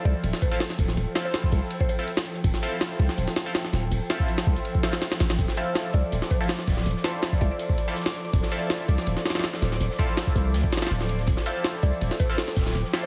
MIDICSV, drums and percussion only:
0, 0, Header, 1, 2, 480
1, 0, Start_track
1, 0, Key_signature, -1, "minor"
1, 0, Tempo, 368098
1, 1265, Time_signature, 4, 2, 24, 8
1, 17033, End_track
2, 0, Start_track
2, 0, Title_t, "Drums"
2, 67, Note_on_c, 9, 51, 62
2, 198, Note_off_c, 9, 51, 0
2, 307, Note_on_c, 9, 51, 88
2, 435, Note_on_c, 9, 38, 56
2, 438, Note_off_c, 9, 51, 0
2, 546, Note_on_c, 9, 36, 95
2, 548, Note_on_c, 9, 51, 69
2, 565, Note_off_c, 9, 38, 0
2, 676, Note_off_c, 9, 36, 0
2, 678, Note_off_c, 9, 51, 0
2, 786, Note_on_c, 9, 38, 124
2, 786, Note_on_c, 9, 51, 90
2, 914, Note_off_c, 9, 38, 0
2, 914, Note_on_c, 9, 38, 54
2, 917, Note_off_c, 9, 51, 0
2, 1025, Note_on_c, 9, 36, 105
2, 1026, Note_on_c, 9, 51, 83
2, 1044, Note_off_c, 9, 38, 0
2, 1153, Note_on_c, 9, 38, 35
2, 1155, Note_off_c, 9, 36, 0
2, 1156, Note_off_c, 9, 51, 0
2, 1268, Note_on_c, 9, 51, 63
2, 1283, Note_off_c, 9, 38, 0
2, 1399, Note_off_c, 9, 51, 0
2, 1506, Note_on_c, 9, 38, 109
2, 1506, Note_on_c, 9, 51, 80
2, 1637, Note_off_c, 9, 38, 0
2, 1637, Note_off_c, 9, 51, 0
2, 1746, Note_on_c, 9, 38, 122
2, 1746, Note_on_c, 9, 51, 91
2, 1871, Note_on_c, 9, 36, 95
2, 1877, Note_off_c, 9, 38, 0
2, 1877, Note_off_c, 9, 51, 0
2, 1985, Note_on_c, 9, 51, 71
2, 2001, Note_off_c, 9, 36, 0
2, 2115, Note_off_c, 9, 51, 0
2, 2223, Note_on_c, 9, 51, 91
2, 2351, Note_on_c, 9, 36, 98
2, 2354, Note_off_c, 9, 51, 0
2, 2465, Note_on_c, 9, 51, 70
2, 2481, Note_off_c, 9, 36, 0
2, 2595, Note_off_c, 9, 51, 0
2, 2706, Note_on_c, 9, 51, 92
2, 2830, Note_on_c, 9, 38, 119
2, 2836, Note_off_c, 9, 51, 0
2, 2944, Note_on_c, 9, 51, 71
2, 2961, Note_off_c, 9, 38, 0
2, 3071, Note_off_c, 9, 51, 0
2, 3071, Note_on_c, 9, 51, 45
2, 3184, Note_off_c, 9, 51, 0
2, 3184, Note_on_c, 9, 36, 115
2, 3184, Note_on_c, 9, 51, 91
2, 3310, Note_on_c, 9, 38, 40
2, 3314, Note_off_c, 9, 36, 0
2, 3314, Note_off_c, 9, 51, 0
2, 3426, Note_on_c, 9, 51, 70
2, 3441, Note_off_c, 9, 38, 0
2, 3557, Note_off_c, 9, 51, 0
2, 3663, Note_on_c, 9, 38, 120
2, 3663, Note_on_c, 9, 51, 91
2, 3794, Note_off_c, 9, 38, 0
2, 3794, Note_off_c, 9, 51, 0
2, 3907, Note_on_c, 9, 51, 70
2, 4030, Note_on_c, 9, 38, 52
2, 4037, Note_off_c, 9, 51, 0
2, 4146, Note_on_c, 9, 51, 90
2, 4161, Note_off_c, 9, 38, 0
2, 4272, Note_on_c, 9, 38, 55
2, 4276, Note_off_c, 9, 51, 0
2, 4386, Note_off_c, 9, 38, 0
2, 4386, Note_on_c, 9, 38, 107
2, 4386, Note_on_c, 9, 51, 83
2, 4516, Note_off_c, 9, 38, 0
2, 4516, Note_off_c, 9, 51, 0
2, 4626, Note_on_c, 9, 38, 121
2, 4626, Note_on_c, 9, 51, 93
2, 4753, Note_off_c, 9, 38, 0
2, 4753, Note_on_c, 9, 38, 56
2, 4756, Note_off_c, 9, 51, 0
2, 4869, Note_off_c, 9, 38, 0
2, 4869, Note_on_c, 9, 38, 43
2, 4869, Note_on_c, 9, 51, 73
2, 4999, Note_off_c, 9, 38, 0
2, 4999, Note_off_c, 9, 51, 0
2, 5106, Note_on_c, 9, 51, 93
2, 5236, Note_off_c, 9, 51, 0
2, 5345, Note_on_c, 9, 38, 107
2, 5345, Note_on_c, 9, 51, 81
2, 5472, Note_on_c, 9, 36, 91
2, 5476, Note_off_c, 9, 38, 0
2, 5476, Note_off_c, 9, 51, 0
2, 5585, Note_on_c, 9, 51, 65
2, 5602, Note_off_c, 9, 36, 0
2, 5710, Note_off_c, 9, 51, 0
2, 5710, Note_on_c, 9, 38, 108
2, 5710, Note_on_c, 9, 51, 80
2, 5825, Note_on_c, 9, 36, 88
2, 5841, Note_off_c, 9, 38, 0
2, 5841, Note_off_c, 9, 51, 0
2, 5951, Note_on_c, 9, 51, 64
2, 5955, Note_off_c, 9, 36, 0
2, 6063, Note_off_c, 9, 51, 0
2, 6063, Note_on_c, 9, 51, 90
2, 6191, Note_on_c, 9, 36, 101
2, 6193, Note_off_c, 9, 51, 0
2, 6303, Note_on_c, 9, 38, 109
2, 6303, Note_on_c, 9, 51, 81
2, 6321, Note_off_c, 9, 36, 0
2, 6428, Note_off_c, 9, 38, 0
2, 6428, Note_off_c, 9, 51, 0
2, 6428, Note_on_c, 9, 38, 105
2, 6428, Note_on_c, 9, 51, 80
2, 6541, Note_off_c, 9, 38, 0
2, 6541, Note_off_c, 9, 51, 0
2, 6541, Note_on_c, 9, 38, 108
2, 6541, Note_on_c, 9, 51, 80
2, 6670, Note_off_c, 9, 38, 0
2, 6670, Note_off_c, 9, 51, 0
2, 6670, Note_on_c, 9, 38, 110
2, 6670, Note_on_c, 9, 51, 81
2, 6784, Note_off_c, 9, 38, 0
2, 6784, Note_off_c, 9, 51, 0
2, 6784, Note_on_c, 9, 38, 107
2, 6784, Note_on_c, 9, 51, 81
2, 6910, Note_off_c, 9, 38, 0
2, 6910, Note_off_c, 9, 51, 0
2, 6910, Note_on_c, 9, 38, 108
2, 6910, Note_on_c, 9, 51, 83
2, 7022, Note_on_c, 9, 42, 91
2, 7024, Note_off_c, 9, 51, 0
2, 7024, Note_on_c, 9, 36, 118
2, 7024, Note_on_c, 9, 51, 92
2, 7040, Note_off_c, 9, 38, 0
2, 7150, Note_on_c, 9, 38, 40
2, 7151, Note_off_c, 9, 38, 0
2, 7151, Note_on_c, 9, 38, 57
2, 7153, Note_off_c, 9, 42, 0
2, 7154, Note_off_c, 9, 51, 0
2, 7155, Note_off_c, 9, 36, 0
2, 7263, Note_on_c, 9, 51, 71
2, 7265, Note_on_c, 9, 42, 70
2, 7281, Note_off_c, 9, 38, 0
2, 7394, Note_off_c, 9, 51, 0
2, 7395, Note_off_c, 9, 42, 0
2, 7499, Note_on_c, 9, 42, 88
2, 7503, Note_on_c, 9, 38, 124
2, 7503, Note_on_c, 9, 51, 92
2, 7507, Note_off_c, 9, 38, 0
2, 7507, Note_on_c, 9, 38, 118
2, 7630, Note_off_c, 9, 42, 0
2, 7633, Note_off_c, 9, 51, 0
2, 7637, Note_off_c, 9, 38, 0
2, 7729, Note_on_c, 9, 42, 74
2, 7743, Note_on_c, 9, 51, 63
2, 7859, Note_off_c, 9, 42, 0
2, 7864, Note_on_c, 9, 42, 44
2, 7873, Note_off_c, 9, 51, 0
2, 7983, Note_on_c, 9, 51, 90
2, 7986, Note_off_c, 9, 42, 0
2, 7986, Note_on_c, 9, 42, 96
2, 8112, Note_on_c, 9, 38, 56
2, 8114, Note_off_c, 9, 51, 0
2, 8117, Note_off_c, 9, 42, 0
2, 8218, Note_on_c, 9, 42, 76
2, 8223, Note_on_c, 9, 51, 70
2, 8224, Note_on_c, 9, 36, 100
2, 8242, Note_off_c, 9, 38, 0
2, 8349, Note_off_c, 9, 42, 0
2, 8353, Note_off_c, 9, 51, 0
2, 8353, Note_on_c, 9, 38, 59
2, 8355, Note_off_c, 9, 36, 0
2, 8451, Note_on_c, 9, 42, 93
2, 8464, Note_off_c, 9, 38, 0
2, 8464, Note_on_c, 9, 38, 124
2, 8464, Note_on_c, 9, 51, 93
2, 8465, Note_off_c, 9, 38, 0
2, 8465, Note_on_c, 9, 38, 109
2, 8581, Note_off_c, 9, 42, 0
2, 8588, Note_off_c, 9, 38, 0
2, 8588, Note_on_c, 9, 38, 57
2, 8594, Note_off_c, 9, 51, 0
2, 8703, Note_on_c, 9, 51, 81
2, 8704, Note_on_c, 9, 36, 103
2, 8706, Note_off_c, 9, 38, 0
2, 8706, Note_on_c, 9, 38, 84
2, 8714, Note_on_c, 9, 42, 67
2, 8761, Note_off_c, 9, 42, 0
2, 8761, Note_on_c, 9, 42, 63
2, 8766, Note_off_c, 9, 38, 0
2, 8766, Note_on_c, 9, 38, 98
2, 8828, Note_off_c, 9, 38, 0
2, 8828, Note_on_c, 9, 38, 35
2, 8834, Note_off_c, 9, 36, 0
2, 8834, Note_off_c, 9, 42, 0
2, 8834, Note_off_c, 9, 51, 0
2, 8834, Note_on_c, 9, 42, 67
2, 8835, Note_off_c, 9, 38, 0
2, 8835, Note_on_c, 9, 38, 89
2, 8890, Note_off_c, 9, 38, 0
2, 8890, Note_off_c, 9, 42, 0
2, 8890, Note_on_c, 9, 38, 97
2, 8890, Note_on_c, 9, 42, 64
2, 8942, Note_on_c, 9, 51, 64
2, 8950, Note_off_c, 9, 42, 0
2, 8950, Note_on_c, 9, 42, 86
2, 9020, Note_off_c, 9, 38, 0
2, 9073, Note_off_c, 9, 51, 0
2, 9080, Note_off_c, 9, 42, 0
2, 9084, Note_on_c, 9, 38, 48
2, 9183, Note_off_c, 9, 38, 0
2, 9183, Note_on_c, 9, 38, 109
2, 9183, Note_on_c, 9, 51, 80
2, 9188, Note_on_c, 9, 42, 76
2, 9313, Note_off_c, 9, 38, 0
2, 9313, Note_off_c, 9, 51, 0
2, 9318, Note_off_c, 9, 42, 0
2, 9414, Note_on_c, 9, 42, 93
2, 9423, Note_on_c, 9, 38, 123
2, 9423, Note_on_c, 9, 51, 93
2, 9545, Note_off_c, 9, 42, 0
2, 9551, Note_on_c, 9, 36, 99
2, 9553, Note_off_c, 9, 38, 0
2, 9553, Note_off_c, 9, 51, 0
2, 9555, Note_on_c, 9, 42, 41
2, 9662, Note_on_c, 9, 51, 70
2, 9676, Note_off_c, 9, 42, 0
2, 9676, Note_on_c, 9, 42, 72
2, 9681, Note_off_c, 9, 36, 0
2, 9793, Note_off_c, 9, 51, 0
2, 9806, Note_off_c, 9, 42, 0
2, 9899, Note_on_c, 9, 42, 89
2, 9902, Note_on_c, 9, 51, 91
2, 10029, Note_off_c, 9, 42, 0
2, 10031, Note_on_c, 9, 36, 97
2, 10033, Note_off_c, 9, 51, 0
2, 10143, Note_on_c, 9, 51, 69
2, 10144, Note_on_c, 9, 42, 66
2, 10161, Note_off_c, 9, 36, 0
2, 10271, Note_on_c, 9, 38, 44
2, 10273, Note_off_c, 9, 51, 0
2, 10274, Note_off_c, 9, 42, 0
2, 10380, Note_on_c, 9, 42, 69
2, 10383, Note_on_c, 9, 51, 93
2, 10387, Note_off_c, 9, 38, 0
2, 10387, Note_on_c, 9, 38, 85
2, 10448, Note_off_c, 9, 38, 0
2, 10448, Note_on_c, 9, 38, 94
2, 10450, Note_off_c, 9, 42, 0
2, 10450, Note_on_c, 9, 42, 73
2, 10510, Note_off_c, 9, 38, 0
2, 10510, Note_on_c, 9, 38, 118
2, 10513, Note_off_c, 9, 51, 0
2, 10514, Note_off_c, 9, 38, 0
2, 10514, Note_on_c, 9, 38, 89
2, 10515, Note_off_c, 9, 42, 0
2, 10515, Note_on_c, 9, 42, 75
2, 10570, Note_off_c, 9, 38, 0
2, 10570, Note_on_c, 9, 38, 86
2, 10582, Note_off_c, 9, 42, 0
2, 10582, Note_on_c, 9, 42, 72
2, 10626, Note_on_c, 9, 51, 73
2, 10630, Note_off_c, 9, 42, 0
2, 10630, Note_on_c, 9, 42, 74
2, 10701, Note_off_c, 9, 38, 0
2, 10753, Note_off_c, 9, 51, 0
2, 10753, Note_on_c, 9, 51, 45
2, 10756, Note_on_c, 9, 38, 41
2, 10760, Note_off_c, 9, 42, 0
2, 10864, Note_on_c, 9, 42, 88
2, 10867, Note_on_c, 9, 36, 117
2, 10868, Note_off_c, 9, 51, 0
2, 10868, Note_on_c, 9, 51, 91
2, 10887, Note_off_c, 9, 38, 0
2, 10986, Note_on_c, 9, 38, 51
2, 10995, Note_off_c, 9, 38, 0
2, 10995, Note_off_c, 9, 42, 0
2, 10995, Note_on_c, 9, 38, 39
2, 10997, Note_off_c, 9, 36, 0
2, 10998, Note_off_c, 9, 51, 0
2, 11100, Note_on_c, 9, 42, 77
2, 11106, Note_on_c, 9, 51, 69
2, 11126, Note_off_c, 9, 38, 0
2, 11230, Note_off_c, 9, 42, 0
2, 11236, Note_off_c, 9, 51, 0
2, 11345, Note_on_c, 9, 38, 124
2, 11345, Note_on_c, 9, 42, 86
2, 11345, Note_on_c, 9, 51, 93
2, 11352, Note_off_c, 9, 38, 0
2, 11352, Note_on_c, 9, 38, 121
2, 11475, Note_off_c, 9, 42, 0
2, 11475, Note_off_c, 9, 51, 0
2, 11482, Note_off_c, 9, 38, 0
2, 11584, Note_on_c, 9, 51, 71
2, 11588, Note_on_c, 9, 42, 76
2, 11710, Note_off_c, 9, 42, 0
2, 11710, Note_on_c, 9, 42, 43
2, 11713, Note_on_c, 9, 38, 52
2, 11714, Note_off_c, 9, 51, 0
2, 11820, Note_off_c, 9, 42, 0
2, 11820, Note_on_c, 9, 42, 91
2, 11825, Note_on_c, 9, 51, 90
2, 11844, Note_off_c, 9, 38, 0
2, 11950, Note_off_c, 9, 42, 0
2, 11953, Note_on_c, 9, 38, 56
2, 11955, Note_off_c, 9, 51, 0
2, 12067, Note_off_c, 9, 38, 0
2, 12067, Note_on_c, 9, 38, 94
2, 12067, Note_on_c, 9, 51, 69
2, 12068, Note_off_c, 9, 38, 0
2, 12068, Note_on_c, 9, 38, 105
2, 12068, Note_on_c, 9, 42, 77
2, 12130, Note_off_c, 9, 38, 0
2, 12130, Note_off_c, 9, 51, 0
2, 12130, Note_on_c, 9, 38, 94
2, 12130, Note_on_c, 9, 51, 70
2, 12193, Note_off_c, 9, 38, 0
2, 12193, Note_off_c, 9, 51, 0
2, 12193, Note_on_c, 9, 38, 91
2, 12193, Note_on_c, 9, 51, 68
2, 12199, Note_off_c, 9, 42, 0
2, 12249, Note_off_c, 9, 38, 0
2, 12249, Note_off_c, 9, 51, 0
2, 12249, Note_on_c, 9, 38, 89
2, 12249, Note_on_c, 9, 51, 70
2, 12300, Note_on_c, 9, 42, 67
2, 12306, Note_off_c, 9, 38, 0
2, 12306, Note_off_c, 9, 51, 0
2, 12306, Note_on_c, 9, 38, 120
2, 12306, Note_on_c, 9, 51, 95
2, 12431, Note_off_c, 9, 42, 0
2, 12431, Note_on_c, 9, 42, 75
2, 12434, Note_off_c, 9, 38, 0
2, 12434, Note_on_c, 9, 38, 97
2, 12436, Note_off_c, 9, 51, 0
2, 12548, Note_off_c, 9, 38, 0
2, 12548, Note_on_c, 9, 38, 43
2, 12548, Note_on_c, 9, 51, 73
2, 12561, Note_off_c, 9, 42, 0
2, 12672, Note_on_c, 9, 42, 63
2, 12675, Note_off_c, 9, 38, 0
2, 12675, Note_on_c, 9, 38, 47
2, 12678, Note_off_c, 9, 51, 0
2, 12787, Note_on_c, 9, 51, 90
2, 12797, Note_off_c, 9, 42, 0
2, 12797, Note_on_c, 9, 42, 97
2, 12806, Note_off_c, 9, 38, 0
2, 12917, Note_off_c, 9, 51, 0
2, 12918, Note_on_c, 9, 38, 47
2, 12927, Note_off_c, 9, 42, 0
2, 13019, Note_on_c, 9, 42, 72
2, 13026, Note_on_c, 9, 36, 99
2, 13028, Note_on_c, 9, 51, 70
2, 13049, Note_off_c, 9, 38, 0
2, 13149, Note_off_c, 9, 42, 0
2, 13154, Note_off_c, 9, 51, 0
2, 13154, Note_on_c, 9, 51, 44
2, 13156, Note_off_c, 9, 36, 0
2, 13260, Note_on_c, 9, 42, 90
2, 13265, Note_off_c, 9, 51, 0
2, 13265, Note_on_c, 9, 38, 120
2, 13265, Note_on_c, 9, 51, 93
2, 13271, Note_off_c, 9, 38, 0
2, 13271, Note_on_c, 9, 38, 122
2, 13390, Note_off_c, 9, 42, 0
2, 13391, Note_on_c, 9, 36, 98
2, 13392, Note_on_c, 9, 42, 41
2, 13395, Note_off_c, 9, 51, 0
2, 13401, Note_off_c, 9, 38, 0
2, 13501, Note_off_c, 9, 42, 0
2, 13501, Note_on_c, 9, 42, 74
2, 13507, Note_on_c, 9, 51, 68
2, 13522, Note_off_c, 9, 36, 0
2, 13632, Note_off_c, 9, 42, 0
2, 13637, Note_off_c, 9, 51, 0
2, 13744, Note_on_c, 9, 42, 85
2, 13747, Note_on_c, 9, 38, 109
2, 13747, Note_on_c, 9, 51, 90
2, 13871, Note_on_c, 9, 36, 99
2, 13875, Note_off_c, 9, 42, 0
2, 13877, Note_off_c, 9, 51, 0
2, 13878, Note_off_c, 9, 38, 0
2, 13986, Note_on_c, 9, 38, 92
2, 13986, Note_on_c, 9, 51, 71
2, 13988, Note_on_c, 9, 42, 68
2, 14002, Note_off_c, 9, 36, 0
2, 14048, Note_off_c, 9, 38, 0
2, 14048, Note_off_c, 9, 51, 0
2, 14048, Note_on_c, 9, 38, 91
2, 14048, Note_on_c, 9, 51, 69
2, 14112, Note_off_c, 9, 38, 0
2, 14112, Note_off_c, 9, 51, 0
2, 14112, Note_on_c, 9, 38, 88
2, 14112, Note_on_c, 9, 51, 68
2, 14118, Note_off_c, 9, 42, 0
2, 14169, Note_off_c, 9, 38, 0
2, 14169, Note_off_c, 9, 51, 0
2, 14169, Note_on_c, 9, 38, 90
2, 14169, Note_on_c, 9, 51, 68
2, 14212, Note_off_c, 9, 38, 0
2, 14212, Note_on_c, 9, 38, 114
2, 14223, Note_on_c, 9, 42, 84
2, 14225, Note_off_c, 9, 51, 0
2, 14225, Note_on_c, 9, 51, 83
2, 14342, Note_off_c, 9, 38, 0
2, 14351, Note_on_c, 9, 38, 48
2, 14353, Note_off_c, 9, 42, 0
2, 14355, Note_off_c, 9, 51, 0
2, 14361, Note_off_c, 9, 38, 0
2, 14361, Note_on_c, 9, 38, 51
2, 14457, Note_on_c, 9, 42, 72
2, 14463, Note_on_c, 9, 51, 71
2, 14492, Note_off_c, 9, 38, 0
2, 14587, Note_off_c, 9, 42, 0
2, 14589, Note_off_c, 9, 51, 0
2, 14589, Note_on_c, 9, 38, 40
2, 14589, Note_on_c, 9, 51, 46
2, 14690, Note_on_c, 9, 42, 88
2, 14702, Note_off_c, 9, 51, 0
2, 14702, Note_on_c, 9, 51, 92
2, 14703, Note_on_c, 9, 36, 114
2, 14719, Note_off_c, 9, 38, 0
2, 14821, Note_off_c, 9, 42, 0
2, 14823, Note_on_c, 9, 38, 53
2, 14829, Note_off_c, 9, 38, 0
2, 14829, Note_on_c, 9, 38, 39
2, 14832, Note_off_c, 9, 51, 0
2, 14834, Note_off_c, 9, 36, 0
2, 14942, Note_on_c, 9, 51, 72
2, 14946, Note_on_c, 9, 42, 66
2, 14960, Note_off_c, 9, 38, 0
2, 15072, Note_off_c, 9, 51, 0
2, 15076, Note_off_c, 9, 42, 0
2, 15184, Note_on_c, 9, 38, 121
2, 15184, Note_on_c, 9, 51, 90
2, 15188, Note_off_c, 9, 38, 0
2, 15188, Note_on_c, 9, 38, 114
2, 15193, Note_on_c, 9, 42, 89
2, 15314, Note_off_c, 9, 51, 0
2, 15318, Note_off_c, 9, 38, 0
2, 15323, Note_off_c, 9, 42, 0
2, 15425, Note_on_c, 9, 51, 64
2, 15427, Note_on_c, 9, 42, 76
2, 15555, Note_off_c, 9, 42, 0
2, 15555, Note_off_c, 9, 51, 0
2, 15555, Note_on_c, 9, 42, 46
2, 15664, Note_off_c, 9, 42, 0
2, 15664, Note_on_c, 9, 42, 88
2, 15665, Note_on_c, 9, 51, 89
2, 15794, Note_off_c, 9, 42, 0
2, 15794, Note_on_c, 9, 38, 54
2, 15795, Note_off_c, 9, 51, 0
2, 15905, Note_on_c, 9, 36, 100
2, 15905, Note_on_c, 9, 42, 74
2, 15906, Note_on_c, 9, 51, 71
2, 15924, Note_off_c, 9, 38, 0
2, 16035, Note_off_c, 9, 42, 0
2, 16035, Note_on_c, 9, 38, 56
2, 16036, Note_off_c, 9, 36, 0
2, 16036, Note_off_c, 9, 51, 0
2, 16140, Note_on_c, 9, 42, 88
2, 16143, Note_off_c, 9, 38, 0
2, 16143, Note_on_c, 9, 38, 115
2, 16146, Note_off_c, 9, 38, 0
2, 16146, Note_on_c, 9, 38, 122
2, 16146, Note_on_c, 9, 51, 92
2, 16271, Note_off_c, 9, 42, 0
2, 16272, Note_off_c, 9, 38, 0
2, 16272, Note_on_c, 9, 38, 56
2, 16276, Note_off_c, 9, 51, 0
2, 16385, Note_on_c, 9, 36, 104
2, 16385, Note_on_c, 9, 51, 84
2, 16388, Note_on_c, 9, 42, 63
2, 16392, Note_off_c, 9, 38, 0
2, 16392, Note_on_c, 9, 38, 85
2, 16438, Note_off_c, 9, 42, 0
2, 16438, Note_on_c, 9, 42, 69
2, 16448, Note_off_c, 9, 38, 0
2, 16448, Note_on_c, 9, 38, 85
2, 16503, Note_off_c, 9, 38, 0
2, 16503, Note_on_c, 9, 38, 93
2, 16513, Note_off_c, 9, 38, 0
2, 16513, Note_on_c, 9, 38, 36
2, 16515, Note_off_c, 9, 51, 0
2, 16516, Note_off_c, 9, 36, 0
2, 16517, Note_off_c, 9, 42, 0
2, 16517, Note_on_c, 9, 42, 73
2, 16567, Note_off_c, 9, 38, 0
2, 16567, Note_off_c, 9, 42, 0
2, 16567, Note_on_c, 9, 38, 94
2, 16567, Note_on_c, 9, 42, 68
2, 16628, Note_on_c, 9, 51, 66
2, 16630, Note_off_c, 9, 42, 0
2, 16630, Note_on_c, 9, 42, 91
2, 16698, Note_off_c, 9, 38, 0
2, 16752, Note_on_c, 9, 38, 47
2, 16758, Note_off_c, 9, 51, 0
2, 16761, Note_off_c, 9, 42, 0
2, 16866, Note_off_c, 9, 38, 0
2, 16866, Note_on_c, 9, 38, 106
2, 16866, Note_on_c, 9, 51, 82
2, 16873, Note_on_c, 9, 42, 72
2, 16996, Note_off_c, 9, 38, 0
2, 16996, Note_off_c, 9, 51, 0
2, 17004, Note_off_c, 9, 42, 0
2, 17033, End_track
0, 0, End_of_file